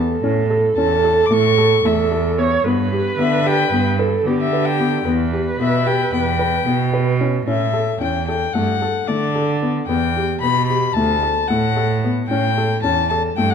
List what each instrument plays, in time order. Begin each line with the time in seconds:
Already playing: cello E2, felt piano B3, viola A4
0.24 cello A2, felt piano C#4
0.50 felt piano A4
0.77 cello E2, felt piano C#4, violin A5
1.04 felt piano A4
1.26 violin D6
1.31 cello A2, felt piano A3, violin C#6
1.58 felt piano A4
1.85 cello E2, felt piano A3, violin E5
2.12 felt piano A4
2.38 felt piano B3, viola C#5
2.65 cello G2, felt piano B3, viola B4
2.92 felt piano G4
3.19 cello D3, felt piano B3, violin E5
3.46 felt piano G4, violin G5
3.72 cello G2, felt piano B3
3.99 viola A4, felt piano B4
4.26 cello D3, felt piano B3, viola G4
4.40 violin E5
4.53 felt piano B4
4.65 violin G5
4.80 felt piano B3
5.05 cello E2, felt piano B3, viola B4
5.33 felt piano G4
5.60 cello B2, felt piano B3, violin E5
5.86 felt piano G4, violin G5
6.13 cello E2, felt piano B3, violin G5
6.39 felt piano B4
6.66 cello B2, felt piano B3
6.93 felt piano B4
7.21 felt piano C#4
7.47 cello A2, felt piano C#4, violin E5
7.73 felt piano A4
8.01 cello E2, felt piano C#4, violin G5
8.28 felt piano A4, violin G5
8.53 cello G2, felt piano A3, violin F#5
8.82 felt piano A4
9.08 cello D3, felt piano A3, violin D5
9.35 felt piano A4
9.62 felt piano B3
9.87 cello E2, felt piano B3, violin G5
10.16 felt piano G4
10.41 cello B2, felt piano B3, violin B5
10.67 felt piano G4, violin B5
10.93 cello D2, felt piano A3, violin A5
11.23 felt piano A4
11.48 cello A2, felt piano A3, violin F#5
11.77 felt piano A4
12.04 felt piano B3
12.27 cello A2, felt piano C#4, violin G5
12.58 felt piano A4
12.83 cello E2, felt piano C#4, violin A5
13.10 felt piano A4, violin A5
13.36 cello G2, felt piano A3, violin G5
13.50 violin F#5